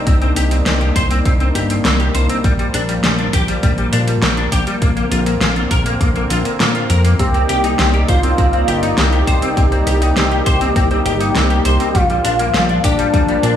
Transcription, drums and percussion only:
0.07 kick loud
0.07 closed hi-hat medium
0.22 closed hi-hat soft
0.36 closed hi-hat medium
0.51 closed hi-hat soft
0.66 snare loud
0.66 closed hi-hat soft
0.81 closed hi-hat soft
0.96 kick loud
0.96 closed hi-hat medium
1.11 closed hi-hat medium
1.25 kick loud
1.25 closed hi-hat soft
1.40 closed hi-hat soft
1.55 closed hi-hat medium
1.70 closed hi-hat medium
1.85 snare loud
1.85 closed hi-hat medium
2.00 closed hi-hat soft
2.15 closed hi-hat medium
2.29 closed hi-hat medium
2.44 kick loud
2.44 closed hi-hat medium
2.59 closed hi-hat soft
2.74 closed hi-hat medium
2.89 closed hi-hat medium
3.04 snare loud
3.04 closed hi-hat soft
3.19 closed hi-hat soft
3.33 kick loud
3.33 closed hi-hat medium
3.48 closed hi-hat medium
3.63 kick loud
3.63 closed hi-hat soft
3.78 closed hi-hat soft
3.93 closed hi-hat medium
4.08 closed hi-hat medium
4.22 snare loud
4.22 closed hi-hat medium
4.37 closed hi-hat soft
4.52 kick medium
4.52 closed hi-hat medium
4.67 closed hi-hat medium
4.82 kick loud
4.82 closed hi-hat soft
4.97 closed hi-hat soft
5.12 closed hi-hat medium
5.26 closed hi-hat soft
5.41 snare loud
5.41 closed hi-hat soft
5.56 closed hi-hat soft
5.71 kick loud
5.71 closed hi-hat medium
5.86 closed hi-hat medium
6.01 kick loud
6.01 closed hi-hat soft
6.16 closed hi-hat soft
6.30 closed hi-hat medium
6.45 closed hi-hat medium
6.60 snare loud
6.60 closed hi-hat soft
6.75 closed hi-hat soft
6.90 closed hi-hat medium
7.05 closed hi-hat medium
7.19 kick loud
7.19 closed hi-hat soft
7.34 closed hi-hat soft
7.49 closed hi-hat medium
7.64 closed hi-hat soft
7.79 snare loud
7.79 closed hi-hat soft
7.94 closed hi-hat soft
8.08 kick loud
8.08 closed hi-hat medium
8.23 closed hi-hat soft
8.38 kick loud
8.38 closed hi-hat soft
8.53 closed hi-hat soft
8.68 closed hi-hat medium
8.83 closed hi-hat soft
8.98 snare loud
8.98 closed hi-hat soft
9.13 closed hi-hat soft
9.27 kick medium
9.27 closed hi-hat medium
9.42 closed hi-hat soft
9.57 kick loud
9.57 closed hi-hat soft
9.72 closed hi-hat soft
9.87 closed hi-hat medium
10.02 closed hi-hat soft
10.17 snare loud
10.17 closed hi-hat soft
10.31 closed hi-hat soft
10.46 kick medium
10.46 closed hi-hat medium
10.61 closed hi-hat soft
10.76 kick loud
10.76 closed hi-hat soft
10.91 closed hi-hat soft
11.06 closed hi-hat medium
11.21 closed hi-hat medium
11.35 snare loud
11.35 closed hi-hat soft
11.50 closed hi-hat soft
11.65 closed hi-hat medium
11.80 closed hi-hat soft
11.95 kick loud
11.95 closed hi-hat soft
12.10 closed hi-hat soft
12.25 closed hi-hat medium
12.39 closed hi-hat medium
12.54 snare loud
12.54 closed hi-hat soft
12.69 closed hi-hat soft
12.84 kick medium
12.84 closed hi-hat medium
12.99 closed hi-hat soft
13.14 kick loud
13.14 closed hi-hat soft
13.29 closed hi-hat soft
13.43 closed hi-hat medium

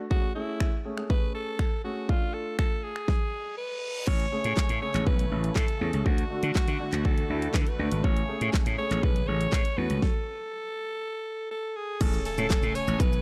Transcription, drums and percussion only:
0.11 kick loud
0.60 finger snap loud
0.60 kick loud
0.98 finger snap medium
1.10 kick loud
1.59 finger snap loud
1.59 kick loud
2.09 kick loud
2.59 finger snap loud
2.59 kick loud
2.96 finger snap medium
3.08 kick loud
3.08 snare medium
4.07 kick loud
4.07 crash medium
4.20 closed hi-hat medium
4.44 closed hi-hat medium
4.57 kick loud
4.57 snare medium
4.57 clap loud
4.69 closed hi-hat medium
4.94 clap medium
4.94 closed hi-hat medium
5.07 kick loud
5.19 closed hi-hat soft
5.44 closed hi-hat medium
5.55 kick loud
5.55 snare medium
5.55 clap loud
5.68 closed hi-hat soft
5.93 closed hi-hat medium
6.06 kick loud
6.18 closed hi-hat medium
6.43 closed hi-hat medium
6.55 kick loud
6.55 snare medium
6.55 clap loud
6.68 closed hi-hat medium
6.93 clap medium
6.93 closed hi-hat medium
7.05 kick loud
7.18 closed hi-hat soft
7.42 closed hi-hat medium
7.54 kick loud
7.54 snare loud
7.54 clap loud
7.67 closed hi-hat soft
7.92 closed hi-hat medium
8.04 kick loud
8.17 closed hi-hat medium
8.41 closed hi-hat medium
8.53 kick loud
8.53 snare loud
8.53 clap loud
8.66 closed hi-hat medium
8.91 clap medium
8.91 closed hi-hat medium
9.03 kick loud
9.16 closed hi-hat soft
9.41 closed hi-hat medium
9.52 kick loud
9.52 snare loud
9.52 clap loud
9.65 closed hi-hat soft
9.90 closed hi-hat medium
10.02 kick loud
10.02 snare medium
12.01 kick loud
12.01 closed hi-hat medium
12.01 crash loud
12.01 shaker medium
12.13 shaker medium
12.25 open hi-hat medium
12.25 shaker medium
12.38 shaker medium
12.50 kick loud
12.50 snare loud
12.50 clap loud
12.50 closed hi-hat medium
12.50 shaker medium
12.63 shaker medium
12.75 open hi-hat medium
12.75 shaker medium
12.88 shaker medium
13.00 kick loud
13.00 closed hi-hat medium
13.00 shaker medium
13.13 shaker soft

